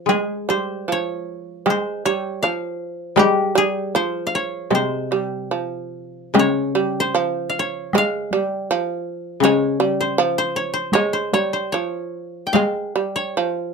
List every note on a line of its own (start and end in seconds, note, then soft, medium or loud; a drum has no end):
0.06 2.42 G#3 medium
0.06 0.48 G#3 medium
0.06 2.06 G#4 medium
0.06 taiko rim medium
0.06 taiko high medium
0.49 0.88 G3 medium
0.49 0.98 C5 medium
0.88 1.65 F3 medium
0.92 1.76 C#5 medium
1.66 2.05 G#3 medium
1.66 taiko rim medium
1.66 taiko high medium
1.70 2.12 C5 medium
2.05 2.43 G3 medium
2.05 3.71 C#5 medium
2.43 3.17 F3 medium
2.43 3.87 F5 medium
3.16 5.51 G3 medium
3.16 3.55 G#3 loud
3.16 3.64 G4 medium
3.16 taiko rim medium
3.16 taiko high medium
3.55 3.94 G3 medium
3.55 5.55 G#4 medium
3.95 4.70 F3 medium
3.95 4.41 C5 medium
4.27 5.71 F5 medium
4.35 4.81 C#5 medium
4.70 7.15 C3 medium
4.70 5.11 G#3 medium
4.70 taiko rim medium
4.70 taiko high medium
4.75 6.45 C5 medium
5.11 5.51 G3 medium
5.11 taiko rim soft
5.51 6.34 F3 medium
6.34 8.69 C#3 medium
6.34 6.75 G#3 medium
6.34 taiko rim medium
6.34 taiko high medium
6.39 7.06 C#5 medium
6.75 7.14 G3 medium
7.00 7.65 C5 medium
7.15 7.94 F3 medium
7.50 7.97 F5 medium
7.59 9.25 C#5 medium
7.93 8.32 G#3 medium
7.93 taiko rim medium
7.93 taiko high medium
7.98 9.42 F5 loud
8.31 8.70 G3 medium
8.31 taiko high soft
8.71 9.43 F3 medium
9.40 11.72 C#3 medium
9.40 10.07 C#5 medium
9.40 taiko rim medium
9.40 taiko high medium
9.45 9.80 G#3 loud
9.80 10.17 G3 medium
10.01 10.38 C5 medium
10.18 10.95 F3 medium
10.38 10.62 C5 medium
10.56 10.80 C#5 medium
10.74 10.99 C5 medium
10.93 11.33 G#3 medium
10.93 11.19 C#5 medium
10.93 taiko rim medium
10.93 taiko high medium
11.13 11.40 C5 medium
11.33 11.73 G3 medium
11.33 11.59 C#5 medium
11.33 taiko high soft
11.53 11.78 C5 medium
11.72 12.55 F3 medium
11.72 13.15 C#5 medium
12.47 13.74 G5 medium
12.53 12.95 G#3 medium
12.53 13.74 F5 medium
12.53 taiko rim medium
12.53 taiko high medium
12.96 13.36 G3 medium
13.16 13.49 C#5 medium
13.37 13.74 F3 medium
13.49 13.74 C5 medium